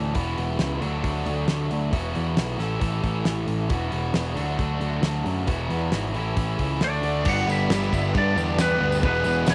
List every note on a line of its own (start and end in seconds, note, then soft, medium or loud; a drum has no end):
0.00 0.15 D2 medium
0.00 0.13 A2 medium
0.00 0.14 E3 medium
0.00 0.14 A3 medium
0.00 0.14 C#4 medium
0.00 0.14 A4 medium
0.14 0.37 E1 medium
0.14 0.80 E2 medium
0.14 0.79 B2 medium
0.14 0.80 E3 medium
0.14 0.81 B3 medium
0.14 0.81 E4 loud
0.14 0.81 F#4 medium
0.14 kick loud
0.14 open hi-hat medium
0.37 0.58 E1 medium
0.37 open hi-hat soft
0.59 0.80 C#2 medium
0.59 snare loud
0.59 open hi-hat medium
0.79 1.03 D2 medium
0.79 1.90 D3 medium
0.79 1.91 F#3 medium
0.79 1.91 A3 medium
0.79 1.91 D4 medium
0.79 1.92 F#4 medium
0.79 open hi-hat soft
1.04 1.25 D2 medium
1.04 kick medium
1.04 open hi-hat medium
1.26 1.47 D2 medium
1.26 open hi-hat medium
1.48 1.70 D2 medium
1.48 snare loud
1.48 open hi-hat medium
1.71 1.92 D2 medium
1.71 open hi-hat soft
1.91 2.14 E1 medium
1.91 2.57 E2 medium
1.91 2.57 B2 medium
1.91 2.57 E3 medium
1.91 2.58 B3 loud
1.91 2.58 E4 medium
1.91 2.59 F#4 loud
1.91 kick loud
1.91 open hi-hat medium
2.15 2.37 E2 medium
2.15 open hi-hat soft
2.37 2.58 B1 medium
2.37 snare loud
2.37 open hi-hat medium
2.57 2.80 A1 medium
2.57 3.68 A2 medium
2.57 3.68 E3 medium
2.57 3.69 A3 medium
2.57 3.69 C#4 medium
2.57 3.70 A4 medium
2.57 snare soft
2.57 open hi-hat soft
2.81 3.03 A1 medium
2.81 kick loud
2.81 open hi-hat medium
3.03 3.25 A1 medium
3.03 kick medium
3.03 open hi-hat soft
3.25 3.47 A1 medium
3.25 snare loud
3.25 open hi-hat medium
3.48 3.69 A1 medium
3.48 open hi-hat soft
3.68 3.92 E1 loud
3.68 4.35 E2 medium
3.68 4.34 B2 medium
3.68 4.35 E3 medium
3.68 4.36 B3 medium
3.68 4.35 E4 medium
3.68 4.35 F#4 medium
3.68 kick loud
3.68 open hi-hat medium
3.92 4.13 E1 medium
3.92 open hi-hat soft
4.14 4.36 E1 medium
4.14 snare loud
4.14 open hi-hat medium
4.34 4.58 D2 medium
4.34 5.46 D3 medium
4.34 5.46 F#3 medium
4.34 5.46 A3 medium
4.34 5.46 D4 medium
4.34 5.47 F#4 medium
4.34 open hi-hat soft
4.59 4.80 D2 medium
4.59 kick loud
4.59 open hi-hat medium
4.81 5.01 D2 medium
4.81 open hi-hat soft
5.02 5.24 D2 medium
5.02 snare loud
5.02 open hi-hat medium
5.26 5.47 F#2 medium
5.26 open hi-hat soft
5.46 5.68 E1 medium
5.46 6.12 E2 medium
5.46 6.13 B2 medium
5.46 6.13 E3 medium
5.46 6.13 B3 medium
5.46 6.14 E4 medium
5.46 6.14 F#4 medium
5.46 kick loud
5.46 open hi-hat medium
5.69 5.91 E2 medium
5.69 open hi-hat soft
5.91 6.13 G#1 medium
5.91 snare loud
5.91 open hi-hat medium
6.13 6.36 A1 medium
6.13 6.79 A2 medium
6.13 6.80 E3 medium
6.13 6.80 A3 medium
6.13 6.81 C#4 medium
6.13 6.81 E4 medium
6.13 open hi-hat soft
6.37 6.58 A1 medium
6.37 kick loud
6.37 open hi-hat medium
6.59 6.80 C#2 medium
6.59 kick medium
6.59 open hi-hat medium
6.80 7.02 D2 medium
6.80 7.24 D3 medium
6.80 7.24 A3 medium
6.80 7.24 D4 medium
6.80 7.25 F#4 loud
6.80 7.29 D5 medium
6.80 snare loud
6.80 open hi-hat medium
7.03 7.24 D2 medium
7.03 open hi-hat medium
7.24 7.46 G1 loud
7.24 7.45 G2 loud
7.24 7.46 D3 loud
7.24 7.46 G3 loud
7.24 9.02 G3 medium
7.24 7.48 B3 loud
7.24 7.47 D4 loud
7.24 7.47 F#4 medium
7.24 7.48 G4 loud
7.24 kick loud
7.24 crash loud
7.24 tambourine soft
7.24 crash medium
7.28 9.02 B3 medium
7.28 9.03 D4 medium
7.28 9.03 B4 medium
7.28 7.50 F#5 loud
7.38 tambourine soft
7.46 7.69 G1 medium
7.46 7.67 G2 medium
7.46 7.68 D3 medium
7.46 7.68 G3 loud
7.46 7.70 B3 medium
7.46 7.69 D4 medium
7.46 8.10 E4 medium
7.46 7.69 G4 medium
7.46 tambourine medium
7.52 8.18 E5 medium
7.69 7.91 G1 medium
7.69 7.90 G2 medium
7.69 7.91 D3 medium
7.69 7.92 G3 medium
7.69 7.93 B3 medium
7.69 7.92 D4 loud
7.69 7.92 G4 loud
7.69 snare loud
7.69 tambourine loud
7.69 crash medium
7.82 snare soft
7.82 tambourine soft
7.91 8.14 G1 medium
7.91 8.13 G2 medium
7.91 8.14 D3 medium
7.91 8.14 G3 medium
7.91 8.14 B3 loud
7.91 8.15 D4 loud
7.91 8.15 G4 medium
7.91 kick medium
7.91 tambourine medium
8.04 tambourine soft
8.14 8.36 G2 medium
8.14 8.35 G2 medium
8.14 8.36 D3 medium
8.14 8.37 G3 medium
8.14 8.37 B3 medium
8.14 8.37 D4 medium
8.14 8.37 G4 medium
8.14 8.61 D5 medium
8.14 kick loud
8.14 tambourine soft
8.14 crash medium
8.36 8.57 E2 medium
8.36 8.57 G2 medium
8.36 8.57 D3 medium
8.36 8.57 G3 medium
8.36 8.58 B3 medium
8.36 8.58 D4 medium
8.36 8.58 G4 loud
8.36 tambourine medium
8.49 tambourine soft
8.58 8.79 E2 loud
8.58 8.79 G2 medium
8.58 8.79 D3 medium
8.58 8.79 G3 medium
8.58 8.80 B3 loud
8.58 8.80 D4 medium
8.58 8.80 G4 medium
8.58 9.04 B4 medium
8.58 snare loud
8.58 tambourine loud
8.58 crash medium
8.80 9.05 D2 medium
8.80 9.01 G2 medium
8.80 9.01 D3 medium
8.80 9.01 G3 medium
8.80 9.02 B3 medium
8.80 9.02 D4 medium
8.80 9.02 G4 loud
8.92 tambourine medium
9.02 9.24 E1 loud
9.02 9.24 E2 loud
9.02 9.24 B2 loud
9.02 9.25 E3 loud
9.02 9.24 G#3 loud
9.02 9.55 G#3 medium
9.02 9.25 B3 loud
9.02 9.55 B3 medium
9.02 9.55 E4 medium
9.02 9.25 G#4 medium
9.02 9.55 B4 medium
9.02 9.50 B4 medium
9.02 kick loud
9.02 crash medium
9.14 tambourine soft
9.24 9.46 E1 medium
9.24 9.46 E2 medium
9.24 9.46 B2 medium
9.24 9.48 E3 medium
9.24 9.47 G#3 loud
9.24 9.47 B3 loud
9.24 9.48 G#4 loud
9.24 tambourine medium
9.46 9.55 E1 medium
9.46 9.55 E2 medium
9.46 9.55 B2 medium
9.46 9.55 E3 medium
9.46 9.55 G#3 medium
9.46 9.55 B3 loud
9.46 9.55 G#4 medium
9.46 snare loud
9.46 tambourine medium
9.46 crash medium
9.50 9.55 C#5 medium